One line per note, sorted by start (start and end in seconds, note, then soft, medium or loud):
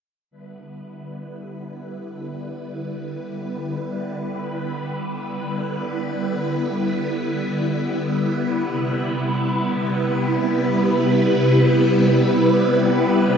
0.31 8.62 D3 medium
0.31 8.62 G3 medium
0.31 13.38 B3 medium
0.31 13.38 E4 medium
0.31 8.62 B4 medium
8.66 13.38 C3 medium
8.66 13.38 G3 medium
8.66 13.38 B4 medium